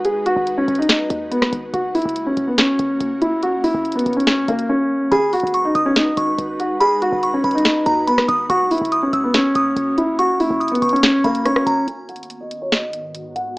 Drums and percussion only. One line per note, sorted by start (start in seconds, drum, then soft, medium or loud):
0.05 closed hi-hat medium
0.26 closed hi-hat medium
0.47 closed hi-hat medium
0.68 closed hi-hat soft
0.75 closed hi-hat medium
0.82 closed hi-hat medium
0.89 snare loud
0.89 closed hi-hat medium
1.10 closed hi-hat medium
1.32 closed hi-hat medium
1.42 cross-stick loud
1.42 snare medium
1.53 closed hi-hat medium
1.74 closed hi-hat medium
1.95 closed hi-hat soft
1.95 open hi-hat medium
2.02 closed hi-hat medium
2.09 closed hi-hat medium
2.16 closed hi-hat medium
2.37 closed hi-hat medium
2.58 snare loud
2.58 closed hi-hat medium
2.79 closed hi-hat medium
3.00 closed hi-hat medium
3.22 closed hi-hat medium
3.43 closed hi-hat medium
3.64 open hi-hat medium
3.85 closed hi-hat medium
3.92 closed hi-hat medium
3.99 closed hi-hat medium
4.06 closed hi-hat medium
4.13 closed hi-hat medium
4.20 closed hi-hat medium
4.27 snare loud
4.27 closed hi-hat medium
4.48 closed hi-hat medium
4.59 closed hi-hat medium
5.12 closed hi-hat medium
5.33 closed hi-hat soft
5.33 open hi-hat medium
5.40 closed hi-hat medium
5.47 closed hi-hat medium
5.54 closed hi-hat medium
5.75 closed hi-hat medium
5.96 snare loud
5.96 closed hi-hat medium
6.17 closed hi-hat medium
6.38 closed hi-hat medium
6.60 closed hi-hat medium
6.81 closed hi-hat medium
7.02 closed hi-hat medium
7.23 closed hi-hat medium
7.44 closed hi-hat soft
7.51 closed hi-hat medium
7.58 closed hi-hat medium
7.65 snare loud
7.65 closed hi-hat medium
7.86 closed hi-hat medium
8.07 closed hi-hat medium
8.18 cross-stick loud
8.18 snare medium
8.29 closed hi-hat medium
8.50 closed hi-hat medium
8.71 closed hi-hat soft
8.71 open hi-hat medium
8.78 closed hi-hat medium
8.85 closed hi-hat medium
8.92 closed hi-hat medium
9.13 closed hi-hat medium
9.34 snare loud
9.34 closed hi-hat medium
9.55 closed hi-hat medium
9.77 closed hi-hat medium
9.98 closed hi-hat medium
10.19 closed hi-hat medium
10.40 open hi-hat medium
10.61 closed hi-hat medium
10.68 closed hi-hat medium
10.75 closed hi-hat medium
10.82 closed hi-hat medium
10.89 closed hi-hat medium
10.96 closed hi-hat medium
11.03 snare loud
11.03 closed hi-hat medium
11.24 closed hi-hat medium
11.35 closed hi-hat medium
11.45 cross-stick medium
11.45 closed hi-hat medium
11.56 cross-stick loud
11.67 closed hi-hat medium
11.88 closed hi-hat medium
12.09 closed hi-hat soft
12.16 closed hi-hat medium
12.23 closed hi-hat medium
12.30 closed hi-hat medium
12.51 closed hi-hat medium
12.72 snare loud
12.72 closed hi-hat medium
12.93 closed hi-hat medium
13.15 closed hi-hat medium
13.36 closed hi-hat medium